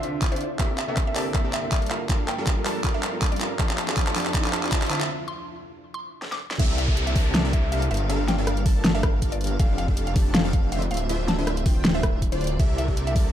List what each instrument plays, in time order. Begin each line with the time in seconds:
Already playing: analog synth pad D2 C3 E4 F4, supersaw synth D3 D4 F4 C5 E5, synth pluck E5
0.02 grand piano D3 C4 F4 E5, closed hi-hat
0.22 kick, clap, closed hi-hat
0.31 grand piano D3 C4 F4 E5, supersaw synth D3 D4 F4 C5 D5, synth pluck C5, closed hi-hat
0.36 closed hi-hat
0.41 closed hi-hat
0.58 analog synth pad C2 G2 D3 A#3 A5, grand piano C3 A#3 D4 A4 E5, supersaw synth C4 G4 A4 A#4 D5 E5, synth pluck E5, kick, clap, closed hi-hat, riser
0.78 synth pluck E5, clap, closed hi-hat
0.87 grand piano C3 A#3 D4 A4 E5, supersaw synth C4 G4 A4 A#4 D5 E5
0.97 kick, clap, closed hi-hat
1.06 grand piano C3 A#3 D4 A4 E5, synth pluck E5
1.16 supersaw synth C4 G4 A4 A#4 D5 A5, clap, open hi-hat
1.33 grand piano C3 A#3 D4 A4 E5, synth pluck E5, kick, clap, closed hi-hat
1.44 supersaw synth C4 G4 A4 A#4 D5 E5
1.53 synth pluck E5, clap, closed hi-hat
1.62 grand piano C3 A#3 D4 A4 E5
1.72 supersaw synth G3 D4 A4 A#4 F5, synth pluck E5, kick, clap, closed hi-hat
1.82 closed hi-hat
1.86 grand piano G3, closed hi-hat
1.90 analog synth pad F3, grand piano F4 A4 A#4, synth pluck E5, clap, closed hi-hat
2.09 grand piano G3 F4 A4 A#4, supersaw synth G3 D4 A4 A#4 F5, kick, clap, closed hi-hat
2.28 synth pluck G5, clap, closed hi-hat
2.37 grand piano G3 F4 A4 A#4, supersaw synth G3 D4 A4 A#4 F5
2.47 kick, clap, closed hi-hat
2.56 grand piano G3 F4 A4 A#4
2.66 supersaw synth G3 D4 A4 A#4 A5, clap, open hi-hat
2.84 grand piano G3 F4 A4 A#4, kick, clap, closed hi-hat
2.94 supersaw synth G3 D4 A4 A#4 F5, synth pluck E5
3.03 clap, closed hi-hat
3.12 grand piano G3 F4 A4 A#4
3.22 supersaw synth G3 D4 A4 A#4 F5, kick, clap, closed hi-hat
3.32 synth pluck D5, closed hi-hat
3.36 grand piano G3 F4, closed hi-hat
3.41 grand piano A4 A#4, clap, closed hi-hat
3.58 analog synth pad F2 D4, grand piano F3 C4 A4 D5, supersaw synth F3 D4 G4 A4 F5, synth pluck A5, kick, clap, closed hi-hat
3.69 clap
3.78 synth pluck A5, clap, closed hi-hat
3.87 grand piano F3 C4 A4 D5, supersaw synth F3 D4 G4 A4 F5, clap
3.97 kick, clap, closed hi-hat
4.06 grand piano F3 C4 A4 D5, synth pluck A5, clap
4.16 supersaw synth F3 D4 G4 A4 A5, clap, open hi-hat
4.26 clap
4.33 grand piano F3 C4 A4 D5, synth pluck A5, kick, clap, closed hi-hat
4.44 supersaw synth F3 D4 G4 A4 F5, clap
4.53 synth pluck A5, clap, closed hi-hat
4.62 grand piano F3 C4 A4 D5, clap
4.71 supersaw synth D3 D4 F4 C5 E5, synth pluck A5, kick, clap, closed hi-hat
4.82 clap, closed hi-hat
4.86 grand piano D3, synth pluck A5, closed hi-hat
4.90 grand piano C4 F4 E5, clap, closed hi-hat
5.01 clap
5.28 synth pluck C6
5.94 synth pluck C6
6.22 snare
6.32 synth pluck D6, snare
6.51 snare
6.59 detuned saw bass C2, analog synth pad C3 A#3 D4 E4 A5, supersaw synth C4 G4 A4 A#4 D5 E5, digital synth lead E5, synth pluck E5, kick, closed hi-hat, crash, downlifter
6.78 synth pluck E5, closed hi-hat
6.88 supersaw synth C4 G4 A4 A#4 D5 E5, digital synth lead E5, kick
6.97 closed hi-hat
7.07 synth pluck E5, closed hi-hat
7.16 supersaw synth C4 G4 A4 A#4 D5 A5, digital synth lead A5, kick, open hi-hat
7.34 synth pluck E5, snare, closed hi-hat
7.45 supersaw synth C4 G4 A4 A#4 D5 E5, digital synth lead E5
7.53 synth pluck E5, kick, closed hi-hat
7.72 supersaw synth G3 D4 A4 A#4 F5, synth pluck E5, digital synth lead F5, closed hi-hat
7.82 closed hi-hat
7.91 detuned saw bass G1, analog synth pad G3 A#3 F4, synth pluck E5, closed hi-hat
7.94 closed hi-hat
7.97 closed hi-hat
8.09 supersaw synth G3 D4 A4 A#4 F5, digital synth lead F5, closed hi-hat
8.28 synth pluck G5, snare, closed hi-hat
8.38 supersaw synth G3 D4 A4 A#4 F5, digital synth lead F5
8.47 cross-stick, closed hi-hat
8.57 closed hi-hat
8.66 supersaw synth G3 D4 A4 A#4 A5, digital synth lead A5, kick, open hi-hat
8.85 snare, closed hi-hat
8.95 supersaw synth G3 D4 A4 A#4 F5, synth pluck E5, digital synth lead F5
9.03 kick, cross-stick, closed hi-hat
9.22 supersaw synth G3 D4 A4 A#4 F5, digital synth lead F5, kick, closed hi-hat
9.32 synth pluck D5, closed hi-hat
9.41 closed hi-hat
9.44 closed hi-hat
9.47 closed hi-hat
9.59 detuned saw bass F1, supersaw synth F3 D4 G4 A4 F5, analog synth pad F3 C4 D4, synth pluck F5, digital synth lead F5, kick, closed hi-hat
9.78 synth pluck F5, closed hi-hat
9.88 supersaw synth F3 D4 G4 A4 F5, digital synth lead F5, kick
9.97 closed hi-hat
10.07 synth pluck F5, closed hi-hat
10.16 supersaw synth F3 D4 G4 A4 A5, digital synth lead A5, kick, open hi-hat
10.35 synth pluck F5, snare, closed hi-hat
10.45 supersaw synth F3 D4 G4 A4 F5, digital synth lead F5
10.53 synth pluck F5, kick, closed hi-hat
10.72 supersaw synth D3 D4 F4 C5 E5, digital synth lead E5, synth pluck F5, closed hi-hat
10.82 closed hi-hat
10.91 detuned saw bass D1, analog synth pad D3 E4 F4, synth pluck F5, closed hi-hat
10.94 closed hi-hat
10.97 closed hi-hat
11.09 supersaw synth D3 D4 F4 C5 E5, digital synth lead E5, closed hi-hat
11.28 synth pluck A5, snare, closed hi-hat
11.38 supersaw synth D3 D4 F4 C5 E5, digital synth lead E5
11.47 cross-stick, closed hi-hat
11.57 closed hi-hat
11.66 supersaw synth D3 D4 F4 C5 G5, digital synth lead G5, kick, open hi-hat
11.85 snare, closed hi-hat
11.95 supersaw synth D3 D4 F4 C5 E5, synth pluck E5, digital synth lead E5
12.03 kick, cross-stick, closed hi-hat
12.22 kick, closed hi-hat
12.32 supersaw synth D3 D4 F4 C5 D5, synth pluck C5, digital synth lead D5, closed hi-hat
12.41 closed hi-hat
12.44 closed hi-hat
12.47 closed hi-hat
12.59 detuned saw bass C2, analog synth pad C3 A#3 D4 A5, supersaw synth C4 G4 A4 A#4 D5 E5, synth pluck E5, digital synth lead E5, kick, closed hi-hat, crash
12.78 synth pluck E5, closed hi-hat
12.88 supersaw synth C4 G4 A4 A#4 D5 E5, digital synth lead E5, kick
12.97 closed hi-hat
13.07 synth pluck E5, closed hi-hat
13.16 supersaw synth C4 G4 A4 A#4 D5 A5, digital synth lead A5, kick, open hi-hat